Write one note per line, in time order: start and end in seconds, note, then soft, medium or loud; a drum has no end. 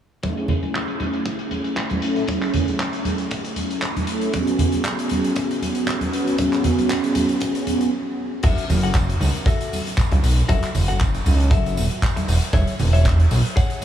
0.22 2.00 A3 medium
0.22 2.00 C#4 medium
0.22 2.00 E4 medium
0.22 2.01 G#4 medium
0.22 kick medium
0.22 closed hi-hat medium
0.22 high conga medium
0.37 closed hi-hat soft
0.48 closed hi-hat medium
0.48 low conga medium
0.63 closed hi-hat soft
0.63 high conga medium
0.75 kick loud
0.75 clap loud
0.75 closed hi-hat medium
0.88 closed hi-hat medium
1.00 closed hi-hat medium
1.00 high conga medium
1.13 closed hi-hat soft
1.26 kick medium
1.26 closed hi-hat medium
1.39 closed hi-hat soft
1.51 closed hi-hat medium
1.51 high conga medium
1.64 closed hi-hat medium
1.76 kick medium
1.76 clap loud
1.76 closed hi-hat medium
1.90 closed hi-hat soft
1.90 high conga medium
2.02 2.25 A3 medium
2.02 2.25 C#4 medium
2.02 2.25 E4 medium
2.02 2.26 A4 loud
2.02 closed hi-hat loud
2.16 closed hi-hat medium
2.27 4.04 A3 medium
2.27 4.05 C#4 medium
2.27 4.05 E4 medium
2.27 4.05 G#4 medium
2.27 kick medium
2.27 closed hi-hat medium
2.27 high conga medium
2.42 clap soft
2.42 closed hi-hat soft
2.54 closed hi-hat medium
2.54 low conga medium
2.68 closed hi-hat medium
2.68 high conga medium
2.79 kick loud
2.79 clap loud
2.79 closed hi-hat medium
2.93 closed hi-hat medium
3.05 closed hi-hat medium
3.05 high conga medium
3.18 closed hi-hat medium
3.31 kick loud
3.31 closed hi-hat medium
3.45 closed hi-hat soft
3.56 closed hi-hat medium
3.56 high conga medium
3.71 closed hi-hat soft
3.82 kick loud
3.82 clap loud
3.82 closed hi-hat medium
3.97 closed hi-hat soft
3.97 high conga medium
4.07 4.30 A3 medium
4.07 4.31 C#4 medium
4.07 4.31 E4 medium
4.07 4.31 A4 loud
4.07 closed hi-hat medium
4.22 closed hi-hat soft
4.32 6.10 B3 medium
4.32 6.10 C#4 medium
4.32 6.10 F#4 medium
4.32 6.11 G#4 loud
4.32 kick loud
4.32 closed hi-hat medium
4.32 high conga medium
4.47 closed hi-hat soft
4.59 closed hi-hat medium
4.59 low conga medium
4.72 closed hi-hat medium
4.72 high conga medium
4.84 kick loud
4.84 clap loud
4.84 closed hi-hat medium
4.99 closed hi-hat medium
5.10 closed hi-hat medium
5.10 high conga medium
5.24 closed hi-hat medium
5.36 kick loud
5.36 closed hi-hat medium
5.51 closed hi-hat soft
5.62 closed hi-hat medium
5.62 high conga medium
5.75 closed hi-hat medium
5.87 kick loud
5.87 clap loud
5.87 closed hi-hat medium
6.01 closed hi-hat medium
6.01 high conga medium
6.12 6.36 B3 medium
6.12 6.36 C#4 medium
6.12 6.36 F#4 medium
6.12 6.36 B4 loud
6.12 closed hi-hat medium
6.27 closed hi-hat soft
6.37 7.90 B3 medium
6.37 7.90 C#4 medium
6.37 7.90 F#4 medium
6.37 7.91 G#4 medium
6.37 kick loud
6.37 closed hi-hat medium
6.37 high conga medium
6.53 clap soft
6.53 closed hi-hat soft
6.64 closed hi-hat medium
6.64 low conga medium
6.79 closed hi-hat soft
6.79 high conga medium
6.90 kick loud
6.90 clap loud
6.90 closed hi-hat medium
7.04 closed hi-hat soft
7.15 closed hi-hat medium
7.15 high conga medium
7.29 closed hi-hat soft
7.40 kick loud
7.40 closed hi-hat medium
7.55 closed hi-hat soft
7.67 closed hi-hat medium
7.67 high conga medium
7.81 closed hi-hat soft
8.43 8.54 F#1 medium
8.43 8.64 F#4 loud
8.43 8.64 A4 medium
8.43 8.64 E5 loud
8.43 kick loud
8.43 closed hi-hat medium
8.43 crash medium
8.43 tambourine soft
8.43 high conga medium
8.58 closed hi-hat medium
8.58 tambourine soft
8.69 9.16 F#1 medium
8.69 open hi-hat loud
8.69 tambourine medium
8.69 low conga medium
8.83 8.95 F#4 medium
8.83 8.95 A4 medium
8.83 8.95 F#5 medium
8.83 closed hi-hat medium
8.83 tambourine soft
8.83 high conga medium
8.94 kick loud
8.94 clap loud
8.94 closed hi-hat medium
8.94 tambourine medium
9.09 muted clean electric guitar stroke soft
9.09 closed hi-hat medium
9.21 9.31 C#2 medium
9.21 open hi-hat loud
9.21 tambourine loud
9.21 high conga medium
9.35 closed hi-hat medium
9.35 tambourine soft
9.46 9.79 F#4 medium
9.46 9.79 A4 medium
9.46 9.79 E5 medium
9.46 kick loud
9.46 closed hi-hat medium
9.46 tambourine medium
9.61 closed hi-hat medium
9.61 tambourine soft
9.73 open hi-hat medium
9.73 tambourine medium
9.73 high conga medium
9.87 closed hi-hat medium
9.87 tambourine soft
9.98 kick loud
9.98 clap loud
9.98 closed hi-hat medium
9.98 tambourine soft
10.12 10.20 C#2 medium
10.12 muted clean electric guitar stroke medium
10.12 closed hi-hat medium
10.12 high conga medium
10.23 10.43 B1 medium
10.23 muted clean electric guitar stroke soft
10.23 open hi-hat loud
10.23 tambourine medium
10.37 closed hi-hat medium
10.37 tambourine soft
10.49 10.59 F#1 medium
10.49 10.69 F#4 loud
10.49 10.69 A4 loud
10.49 10.69 E5 loud
10.49 kick loud
10.49 closed hi-hat medium
10.49 tambourine soft
10.49 high conga medium
10.63 clap soft
10.63 closed hi-hat medium
10.63 tambourine soft
10.75 11.21 F#1 medium
10.75 open hi-hat loud
10.75 tambourine medium
10.75 low conga medium
10.88 11.00 F#4 medium
10.88 11.00 A4 medium
10.88 11.00 F#5 medium
10.88 closed hi-hat soft
10.88 tambourine soft
10.88 high conga medium
11.00 kick loud
11.00 clap loud
11.00 closed hi-hat medium
11.00 tambourine medium
11.14 muted clean electric guitar stroke soft
11.14 closed hi-hat soft
11.14 tambourine soft
11.26 11.53 C#2 loud
11.26 open hi-hat medium
11.26 tambourine medium
11.26 high conga loud
11.40 closed hi-hat medium
11.40 tambourine soft
11.51 11.79 F#1 medium
11.51 11.84 F#4 medium
11.51 11.84 A4 medium
11.51 11.84 E5 medium
11.51 kick loud
11.51 closed hi-hat medium
11.51 tambourine medium
11.66 closed hi-hat medium
11.66 tambourine soft
11.77 11.87 E1 medium
11.77 open hi-hat medium
11.77 tambourine loud
11.77 high conga medium
11.91 closed hi-hat medium
11.91 tambourine soft
12.02 kick loud
12.02 clap loud
12.02 closed hi-hat medium
12.02 tambourine medium
12.16 muted clean electric guitar stroke medium
12.16 closed hi-hat medium
12.16 tambourine soft
12.16 high conga medium
12.28 12.38 E1 medium
12.28 muted clean electric guitar stroke soft
12.28 open hi-hat loud
12.28 tambourine medium
12.42 closed hi-hat medium
12.42 tambourine soft
12.53 12.64 E1 medium
12.53 12.74 G#4 loud
12.53 12.74 C#5 medium
12.53 12.74 E5 medium
12.53 kick loud
12.53 closed hi-hat medium
12.53 tambourine soft
12.53 high conga medium
12.67 closed hi-hat medium
12.67 tambourine soft
12.79 13.26 E1 medium
12.79 open hi-hat loud
12.79 tambourine medium
12.79 low conga medium
12.93 13.05 G#4 medium
12.93 13.05 C#5 medium
12.93 13.05 E5 medium
12.93 closed hi-hat medium
12.93 tambourine soft
12.93 high conga medium
13.05 kick loud
13.05 clap loud
13.05 closed hi-hat medium
13.05 tambourine medium
13.19 muted clean electric guitar stroke soft
13.19 closed hi-hat medium
13.31 13.41 B1 loud
13.31 open hi-hat loud
13.31 tambourine medium
13.31 high conga medium
13.45 closed hi-hat soft
13.45 tambourine soft
13.56 13.85 G#4 medium
13.56 13.85 C#5 medium
13.56 13.85 F#5 medium
13.56 kick loud
13.56 closed hi-hat medium
13.56 tambourine soft
13.70 closed hi-hat medium
13.70 tambourine soft
13.82 open hi-hat loud